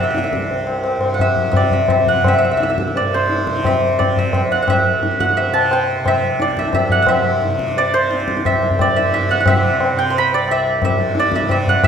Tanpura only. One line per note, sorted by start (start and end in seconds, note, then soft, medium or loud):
0.00 0.48 C2 medium
0.00 0.97 G2 medium
0.00 1.48 C3 medium
0.48 2.49 C2 medium
0.98 3.00 G2 medium
1.48 1.99 C3 medium
1.99 3.48 C3 medium
2.49 4.51 C2 medium
3.00 4.99 G2 medium
3.48 4.00 C3 medium
4.00 5.51 C3 medium
4.51 6.49 C2 medium
5.00 6.98 G2 medium
5.51 6.00 C3 medium
6.00 7.47 C3 medium
6.49 8.48 C2 medium
6.99 8.96 G2 medium
7.47 7.97 C3 medium
7.97 9.47 C3 medium
8.48 10.43 C2 medium
8.96 10.93 G2 medium
9.47 9.93 C3 medium
9.93 11.42 C3 medium
10.44 11.88 C2 medium
10.94 11.88 G2 medium
11.42 11.88 C3 medium